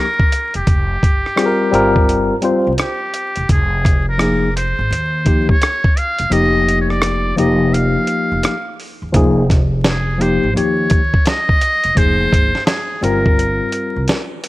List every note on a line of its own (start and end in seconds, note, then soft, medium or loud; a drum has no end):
0.00 0.51 A#4 medium
0.20 kick medium
0.32 closed hi-hat medium
0.54 0.65 E1 medium
0.54 2.34 G4 medium
0.54 closed hi-hat medium
0.67 0.96 F1 loud
0.67 kick medium
0.67 closed hi-hat medium
1.03 1.21 G1 medium
1.03 kick medium
1.03 closed hi-hat medium
1.26 cross-stick soft
1.36 1.70 G3 medium
1.36 1.71 C4 medium
1.36 1.73 F4 medium
1.36 1.47 G#4 medium
1.36 cross-stick loud
1.36 closed hi-hat medium
1.46 1.74 A#4 medium
1.71 2.29 G1 medium
1.71 2.33 G3 medium
1.71 2.34 C4 medium
1.71 2.34 F4 medium
1.71 2.35 A#4 medium
1.71 closed hi-hat medium
1.96 kick medium
2.09 closed hi-hat medium
2.42 2.71 G3 medium
2.42 2.71 C4 medium
2.42 2.72 F4 medium
2.42 2.72 C5 medium
2.42 closed hi-hat medium
2.67 2.77 C2 medium
2.78 3.47 G4 medium
2.78 cross-stick loud
2.78 closed hi-hat medium
3.14 closed hi-hat medium
3.36 3.47 E1 medium
3.36 closed hi-hat medium
3.49 4.74 F1 loud
3.49 4.05 G#4 medium
3.49 kick medium
3.49 closed hi-hat medium
3.85 kick medium
3.85 cross-stick soft
3.85 closed hi-hat medium
4.09 4.53 A#4 medium
4.18 4.47 F3 medium
4.18 4.48 A#3 medium
4.18 4.48 D#4 medium
4.18 4.49 G#4 medium
4.18 cross-stick loud
4.18 closed hi-hat medium
4.56 5.46 C5 medium
4.56 closed hi-hat medium
4.79 4.88 G#1 medium
4.90 5.47 D#2 loud
4.90 closed hi-hat medium
5.25 5.53 F3 medium
5.25 5.54 A#3 medium
5.25 5.54 D#4 medium
5.25 5.55 G4 medium
5.25 kick medium
5.25 closed hi-hat medium
5.49 6.00 C#5 medium
5.49 kick medium
5.62 cross-stick loud
5.62 closed hi-hat medium
5.84 kick medium
5.97 6.34 F5 loud
5.97 closed hi-hat medium
6.19 6.30 E1 medium
6.19 closed hi-hat medium
6.30 7.33 F1 loud
6.30 7.32 F3 medium
6.30 7.33 A#3 medium
6.30 7.33 D#4 medium
6.30 7.33 G4 medium
6.30 6.81 D#5 loud
6.30 closed hi-hat loud
6.68 closed hi-hat medium
6.81 6.92 C#5 medium
6.90 7.37 D5 medium
6.90 cross-stick soft
7.02 cross-stick loud
7.02 closed hi-hat medium
7.36 7.94 F1 medium
7.36 8.52 F3 medium
7.36 8.53 A#3 medium
7.36 8.53 D#4 medium
7.36 8.54 G4 medium
7.36 7.75 D#5 medium
7.36 closed hi-hat medium
7.74 8.79 F5 medium
7.74 closed hi-hat medium
8.07 closed hi-hat medium
8.32 8.41 F1 medium
8.43 cross-stick medium
8.43 closed hi-hat medium
8.80 open hi-hat medium
9.02 9.12 E2 medium
9.13 10.39 F1 loud
9.13 9.42 F3 medium
9.13 9.42 A#3 medium
9.13 9.43 D#4 medium
9.13 9.43 G#4 medium
9.13 kick loud
9.13 closed hi-hat loud
9.50 kick loud
9.50 snare soft
9.50 closed hi-hat medium
9.84 10.23 G#4 medium
9.84 snare loud
9.84 closed hi-hat medium
10.18 10.47 F3 medium
10.18 10.48 A#3 medium
10.18 10.48 D#4 medium
10.18 10.49 G4 medium
10.18 10.56 C5 medium
10.18 closed hi-hat medium
10.43 10.53 G#1 medium
10.54 10.99 F3 medium
10.54 11.00 A#3 medium
10.54 11.00 D#4 medium
10.54 11.01 G4 medium
10.54 11.29 C#5 medium
10.54 closed hi-hat medium
10.90 kick medium
10.90 closed hi-hat medium
11.14 kick loud
11.26 11.99 D#5 loud
11.26 snare medium
11.26 closed hi-hat medium
11.49 kick medium
11.61 closed hi-hat medium
11.84 11.94 E1 medium
11.84 closed hi-hat medium
11.95 12.25 F1 loud
11.95 12.50 F3 medium
11.95 12.50 A#3 medium
11.95 12.51 D#4 medium
11.95 12.51 G#4 medium
11.95 12.66 C5 loud
11.95 kick loud
11.95 closed hi-hat loud
12.33 12.51 G1 medium
12.33 kick medium
12.33 closed hi-hat medium
12.55 snare soft
12.67 13.05 G#4 medium
12.67 snare loud
12.67 closed hi-hat medium
13.01 13.59 G1 loud
13.01 14.17 G3 medium
13.01 14.18 C4 medium
13.01 14.18 F4 medium
13.01 14.09 A#4 medium
13.01 14.19 A#4 medium
13.01 closed hi-hat medium
13.26 kick medium
13.39 closed hi-hat medium
13.72 closed hi-hat medium
13.96 14.06 C2 medium
14.08 snare loud
14.08 closed hi-hat medium
14.44 closed hi-hat medium